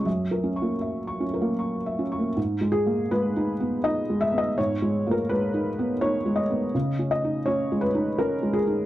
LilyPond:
<<
  \new Staff \with { instrumentName = "Felt piano" } { \time 3/4 \key gis \minor \tempo 4 = 83 \tuplet 3/2 { e''8 ais'8 cis'''8 e''8 cis'''8 ais'8 cis'''8 e''8 cis'''8 } | r8 gis'8 b'4 dis''8 e''16 dis''16 | cis''8. ais'16 b'4 cis''8 dis''8~ | dis''8 dis''8 cis''8 b'8 ais'8 gis'8 | }
  \new Staff \with { instrumentName = "Felt piano" } { \time 3/4 \key gis \minor fis,8 cis'16 ais8. cis'16 ais8. cis'16 ais16 | \tuplet 3/2 { gis,8 gis8 ais8 gis8 dis'8 b8 dis'8 gis8 b8 } | \tuplet 3/2 { gis,8 gis8 ais8 gis8 dis'8 b8 dis'8 gis8 b8 } | \tuplet 3/2 { cis8 cis'8 dis'8 cis'8 gis8 dis'8 cis'8 gis8 dis'8 } | }
>>